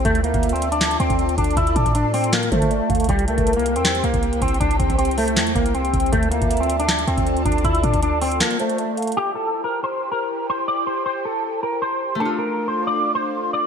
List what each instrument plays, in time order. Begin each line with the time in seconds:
0.05 808-style bass D2, clean electric guitar A3, analog synth pad F4 A4 D5 A5, kick, closed hi-hat
0.15 closed hi-hat
0.23 clean electric guitar A#3, soft synth lead E5, closed hi-hat
0.34 808-style bass D2, kick, closed hi-hat
0.43 closed hi-hat
0.49 clean electric guitar C4, closed hi-hat
0.56 closed hi-hat
0.62 closed hi-hat
0.72 clean electric guitar D4, closed hi-hat
0.81 snare, clap, closed hi-hat
0.91 closed hi-hat
1.00 808-style bass D2, clean electric guitar C4, closed hi-hat
1.10 808-style bass D2, kick, closed hi-hat
1.19 closed hi-hat
1.29 closed hi-hat
1.38 808-style bass D2, clean electric guitar D4, kick, closed hi-hat
1.44 closed hi-hat
1.51 closed hi-hat
1.57 808-style bass D2, clean electric guitar E4, kick, closed hi-hat
1.67 closed hi-hat
1.76 808-style bass A2, clean electric guitar D4, soft synth lead D5, kick, closed hi-hat
1.86 kick, closed hi-hat
1.95 clean electric guitar D4, closed hi-hat
2.14 clean electric guitar C4, open hi-hat
2.24 closed hi-hat
2.33 clean electric guitar A#3, snare, clap, closed hi-hat
2.43 closed hi-hat
2.52 808-style bass D3, clean electric guitar A3, soft synth lead C5, kick, closed hi-hat
2.62 kick, closed hi-hat
2.71 soft synth lead D5, closed hi-hat
2.90 808-style bass D2, soft synth lead F5, kick, closed hi-hat
2.95 closed hi-hat
3.00 closed hi-hat
3.04 closed hi-hat
3.09 808-style bass C2, clean electric guitar G3, analog synth pad E4 G4 C5 G5, kick, closed hi-hat
3.19 closed hi-hat
3.27 clean electric guitar A3, soft synth lead A#4, closed hi-hat
3.38 808-style bass C2, kick, closed hi-hat
3.47 closed hi-hat
3.53 clean electric guitar A#3, closed hi-hat
3.59 closed hi-hat
3.66 closed hi-hat
3.76 808-style bass E2, clean electric guitar C4, closed hi-hat
3.85 snare, clap, closed hi-hat
3.95 closed hi-hat
4.04 808-style bass C2, clean electric guitar A#3, closed hi-hat
4.14 808-style bass C2, kick, closed hi-hat
4.23 closed hi-hat
4.33 closed hi-hat
4.42 808-style bass C2, clean electric guitar C4, kick, closed hi-hat
4.48 closed hi-hat
4.54 closed hi-hat
4.60 808-style bass C2, clean electric guitar D4, kick, closed hi-hat
4.71 closed hi-hat
4.79 808-style bass C2, clean electric guitar C4, soft synth lead C5, kick, closed hi-hat
4.90 kick, closed hi-hat
4.98 clean electric guitar C4, closed hi-hat
5.05 closed hi-hat
5.11 closed hi-hat
5.18 clean electric guitar A3, open hi-hat
5.28 closed hi-hat
5.37 808-style bass E2, snare, clap, closed hi-hat
5.47 closed hi-hat
5.55 808-style bass C2, clean electric guitar A#3, kick, closed hi-hat
5.66 closed hi-hat
5.74 clean electric guitar C4, closed hi-hat
5.85 closed hi-hat
5.94 808-style bass C2, kick, closed hi-hat
6.00 closed hi-hat
6.06 closed hi-hat
6.13 808-style bass D2, clean electric guitar A3, analog synth pad F4 A4 D5 A5, kick, closed hi-hat
6.23 closed hi-hat
6.31 clean electric guitar A#3, soft synth lead E5, closed hi-hat
6.42 808-style bass D2, kick, closed hi-hat
6.51 closed hi-hat
6.57 clean electric guitar C4, closed hi-hat
6.63 closed hi-hat
6.70 closed hi-hat
6.79 clean electric guitar D4, closed hi-hat
6.89 snare, clap, closed hi-hat
6.99 closed hi-hat
7.07 808-style bass D2, clean electric guitar C4, closed hi-hat
7.18 808-style bass D2, kick, closed hi-hat
7.27 closed hi-hat
7.37 closed hi-hat
7.46 808-style bass D2, clean electric guitar D4, kick, closed hi-hat
7.52 closed hi-hat
7.58 closed hi-hat
7.65 808-style bass D2, clean electric guitar E4, kick, closed hi-hat
7.75 closed hi-hat
7.83 808-style bass A2, clean electric guitar D4, soft synth lead D5, kick, closed hi-hat
7.94 808-style bass D2, kick, closed hi-hat
8.02 clean electric guitar D4, closed hi-hat
8.21 clean electric guitar C4, open hi-hat
8.32 closed hi-hat
8.40 clean electric guitar A#3, snare, clap, closed hi-hat
8.51 closed hi-hat
8.59 clean electric guitar A3, soft synth lead C5, closed hi-hat
8.70 closed hi-hat
8.78 soft synth lead D5, closed hi-hat
8.97 soft synth lead F5, closed hi-hat
9.02 closed hi-hat
9.07 closed hi-hat
9.12 closed hi-hat
9.16 analog synth pad E4 G4 C5 G5, clean electric guitar G4
9.35 clean electric guitar A4
9.64 clean electric guitar A#4
9.84 clean electric guitar C5
10.12 clean electric guitar A#4
10.50 clean electric guitar C5
10.68 clean electric guitar D5
10.87 clean electric guitar C5
11.06 clean electric guitar C5
11.25 clean electric guitar A4
11.63 clean electric guitar A#4
11.82 clean electric guitar C5
12.15 harp A3
12.20 analog synth pad D4 F4 A4 F5, harp D4, clean electric guitar A4
12.25 harp F4
12.39 clean electric guitar A#4
12.68 clean electric guitar C5
12.87 clean electric guitar D5
13.15 clean electric guitar C5
13.53 clean electric guitar D5